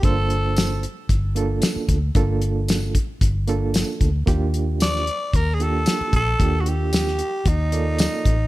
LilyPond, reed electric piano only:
\new Staff \with { instrumentName = "Reed electric piano" } { \time 4/4 \key g \minor \tempo 4 = 113 <bes d' f' c''>4. r4 <bes d' f' a'>4 r8 | <bes d' f' a'>4. r4 <bes d' f' a'>4 r8 | <bes d' f' g'>4. r4 <bes d' f' g'>4 r8 | <bes d' f' g'>4. r4 <bes f' a' d''>4 r8 | }